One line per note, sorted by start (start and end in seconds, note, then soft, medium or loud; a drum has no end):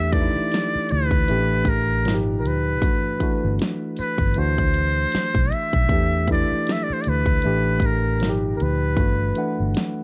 0.00 0.28 E2 loud
0.00 0.12 E3 medium
0.00 0.14 A3 medium
0.00 0.10 D4 medium
0.00 0.11 G4 medium
0.00 0.14 E5 loud
0.12 1.27 E3 medium
0.12 1.28 A3 medium
0.12 1.29 D4 medium
0.12 0.21 D#4 medium
0.12 0.93 D5 loud
0.12 kick medium
0.12 closed hi-hat medium
0.22 1.33 E4 medium
0.36 muted fingered electric bass stroke soft
0.52 snare loud
0.52 closed hi-hat medium
0.76 muted fingered electric bass stroke soft
0.89 1.25 D2 medium
0.89 1.71 B4 loud
0.89 closed hi-hat medium
1.11 kick loud
1.28 1.63 A1 loud
1.28 1.99 E3 medium
1.28 1.99 A3 medium
1.28 1.36 C#4 medium
1.28 2.00 G4 medium
1.28 closed hi-hat medium
1.36 2.03 D4 medium
1.65 2.07 A1 medium
1.65 kick loud
1.65 closed hi-hat medium
1.69 2.20 A#4 loud
2.05 2.45 G#1 loud
2.05 2.76 A#2 medium
2.05 2.76 F3 medium
2.05 2.77 D#4 medium
2.05 2.14 F4 medium
2.05 snare loud
2.05 closed hi-hat medium
2.14 2.80 G4 medium
2.39 2.49 A#4 medium
2.45 2.83 D2 medium
2.45 3.61 B4 medium
2.45 closed hi-hat medium
2.82 3.16 G1 loud
2.82 3.17 E3 medium
2.82 3.17 A3 medium
2.82 3.18 D4 medium
2.82 3.18 F#4 medium
2.82 kick loud
2.82 closed hi-hat medium
3.20 4.35 E3 medium
3.20 4.35 A3 medium
3.20 4.37 D4 medium
3.20 4.37 F#4 medium
3.20 kick medium
3.20 closed hi-hat medium
3.44 3.58 G1 medium
3.59 snare loud
3.59 closed hi-hat medium
3.97 4.40 B4 loud
3.97 muted fingered electric bass stroke soft
3.97 open hi-hat medium
4.18 4.34 G1 medium
4.18 kick medium
4.34 5.05 D2 loud
4.34 5.77 E3 medium
4.34 5.77 A3 medium
4.34 5.78 D4 medium
4.34 closed hi-hat medium
4.38 5.78 F#4 medium
4.38 5.54 C5 loud
4.58 kick loud
4.74 closed hi-hat medium
5.12 muted fingered electric bass stroke soft
5.12 snare medium
5.12 closed hi-hat medium
5.35 5.50 B1 medium
5.35 kick loud
5.52 6.29 E5 loud
5.52 closed hi-hat medium
5.73 5.88 B1 medium
5.73 kick medium
5.89 6.43 E2 loud
5.89 6.25 E3 medium
5.89 6.26 A3 medium
5.89 6.26 D4 medium
5.89 6.26 G4 medium
5.89 kick loud
5.89 closed hi-hat medium
6.28 7.43 E3 medium
6.28 7.44 A3 medium
6.28 7.44 D4 medium
6.28 7.45 E4 medium
6.28 kick medium
6.28 closed hi-hat medium
6.32 6.74 D5 loud
6.52 muted fingered electric bass stroke soft
6.67 snare loud
6.67 closed hi-hat medium
6.72 6.85 E5 medium
6.83 6.94 D5 medium
6.90 7.03 C5 medium
6.90 muted fingered electric bass stroke soft
7.01 7.10 D5 medium
7.01 closed hi-hat medium
7.07 7.40 D2 medium
7.07 7.87 B4 loud
7.26 kick loud
7.42 7.79 A1 medium
7.42 8.14 E3 medium
7.42 8.15 A3 medium
7.42 8.15 D4 medium
7.42 closed hi-hat medium
7.46 8.16 G4 medium
7.80 8.23 A1 medium
7.80 kick loud
7.80 closed hi-hat medium
7.86 8.36 A#4 medium
8.20 8.56 G#1 loud
8.20 8.92 A#2 medium
8.20 8.91 F3 medium
8.20 8.92 D#4 medium
8.20 8.29 F#4 medium
8.20 snare medium
8.20 closed hi-hat medium
8.30 8.96 G4 medium
8.56 8.64 A#4 medium
8.56 closed hi-hat medium
8.61 8.94 D2 medium
8.61 9.76 B4 medium
8.97 9.31 G1 loud
8.97 9.33 E3 medium
8.97 9.33 A3 medium
8.97 9.33 D4 medium
8.97 9.34 F#4 medium
8.97 kick loud
8.97 closed hi-hat loud
9.35 10.04 E3 medium
9.35 10.04 A3 medium
9.35 10.04 D4 medium
9.35 10.04 F#5 medium
9.35 closed hi-hat medium
9.60 9.74 G1 medium
9.74 snare loud
9.74 closed hi-hat medium